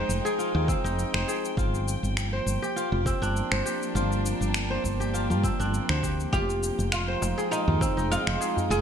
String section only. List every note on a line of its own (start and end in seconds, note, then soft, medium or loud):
0.00 1.56 F3 medium
0.00 1.58 G#3 medium
0.00 1.57 D#4 medium
0.00 6.33 G5 medium
1.58 8.81 F3 medium
2.23 8.23 A#3 medium
3.28 6.33 D4 medium
6.66 8.81 G5 medium
6.80 8.81 G#3 medium
7.09 8.81 D#4 medium